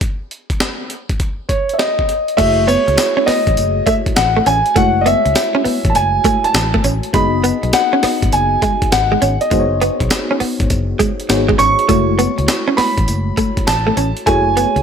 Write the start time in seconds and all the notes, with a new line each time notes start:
0.01 kick, closed hi-hat
0.31 closed hi-hat
0.50 kick, closed hi-hat
0.60 snare, closed hi-hat
0.90 closed hi-hat
1.09 kick, closed hi-hat
1.20 kick, closed hi-hat
1.49 C#5, kick, closed hi-hat
1.69 closed hi-hat
1.74 E5
1.79 D#5, snare, closed hi-hat
1.99 kick
2.09 closed hi-hat
2.28 closed hi-hat
2.37 F#1 A3 E4 F#4 G#4 C#5 E5, kick, closed hi-hat, crash, tambourine
2.67 B3 C#5, closed hi-hat, tambourine
2.88 C#2, muted clean electric guitar stroke, closed hi-hat
2.98 muted clean electric guitar stroke, snare, closed hi-hat, tambourine
3.17 C#4
3.26 B3 D#5, muted fingered electric bass stroke, snare, open hi-hat
3.47 A1, kick, closed hi-hat
3.57 F#1, closed hi-hat, tambourine
3.86 A3 E5, kick, closed hi-hat, tambourine
4.06 kick, closed hi-hat
4.16 A1 F#5, muted clean electric guitar stroke, snare, closed hi-hat, tambourine
4.37 A3
4.46 A1 C#4 G#5, closed hi-hat, tambourine
4.66 closed hi-hat
4.75 F#1 G#3 A3 E4 F#4 C#5 F#5, kick, closed hi-hat, tambourine
5.01 D#5
5.06 B3 E5, closed hi-hat, tambourine
5.25 C#2, muted clean electric guitar stroke, closed hi-hat
5.35 muted clean electric guitar stroke, snare, closed hi-hat, tambourine
5.55 C#4
5.65 B3, muted fingered electric bass stroke, open hi-hat
5.85 A1, kick, closed hi-hat
5.90 A5
5.95 F#1 G#5, closed hi-hat, tambourine
6.24 A3, kick, closed hi-hat, tambourine
6.44 A5, closed hi-hat
6.54 A1, muted clean electric guitar stroke, snare, closed hi-hat, tambourine
6.74 A3, kick
6.84 A1 C#4, closed hi-hat, tambourine
7.03 closed hi-hat
7.13 F#1 G#3 B3 D#4 F#4 G#4 D#5 B5, kick, closed hi-hat, tambourine
7.44 B3, closed hi-hat, tambourine
7.63 B1, muted clean electric guitar stroke, closed hi-hat
7.73 F#5, muted clean electric guitar stroke, snare, closed hi-hat, tambourine
7.93 C#4
8.03 B3, muted fingered electric bass stroke, snare, open hi-hat
8.22 G#1, kick, closed hi-hat
8.32 F#1 G#5, closed hi-hat, tambourine
8.62 G#3, kick, closed hi-hat, tambourine
8.82 kick, closed hi-hat
8.92 G#1 F#5, muted clean electric guitar stroke, snare, closed hi-hat, tambourine
9.12 G#3
9.22 G#1 C#4, closed hi-hat, tambourine
9.41 D#5, closed hi-hat
9.51 F#1 G#3 B3 D#4 F#4 G#4 C5, kick, closed hi-hat, tambourine
9.60 C#5
9.81 B3, closed hi-hat, tambourine
10.00 B1, muted clean electric guitar stroke, kick, closed hi-hat
10.10 muted clean electric guitar stroke, snare, closed hi-hat, tambourine
10.31 C#4
10.40 B3, muted fingered electric bass stroke, open hi-hat
10.60 G#1, kick, closed hi-hat
10.70 F#1, kick, closed hi-hat, tambourine
10.99 G#3, kick, closed hi-hat, tambourine
11.20 closed hi-hat
11.29 G#1 B3 D#4 F#4 G#4 C#5, muted clean electric guitar stroke, snare, closed hi-hat, tambourine
11.48 G#3, kick
11.58 G#1 C#4 C#6, closed hi-hat, tambourine
11.79 closed hi-hat
11.89 F#1 G#3 A3 E4 F#4 C#5, kick, closed hi-hat, tambourine
12.19 B3, closed hi-hat, tambourine
12.38 C#2, muted clean electric guitar stroke, closed hi-hat
12.48 muted clean electric guitar stroke, snare, closed hi-hat, tambourine
12.68 C#4
12.77 B3 B5, muted fingered electric bass stroke, snare, open hi-hat
12.98 A1, kick, closed hi-hat
13.08 F#1, closed hi-hat, tambourine
13.37 A3, kick, closed hi-hat, tambourine
13.57 kick, closed hi-hat
13.67 A1 A5, muted clean electric guitar stroke, snare, closed hi-hat, tambourine
13.87 A3
13.97 A1 C#4, closed hi-hat, tambourine
14.17 closed hi-hat
14.26 F#1 A3 E4 F#4 G#4 C#5 G#5, kick, closed hi-hat, tambourine
14.57 B3, closed hi-hat, tambourine
14.76 C#2, muted clean electric guitar stroke, closed hi-hat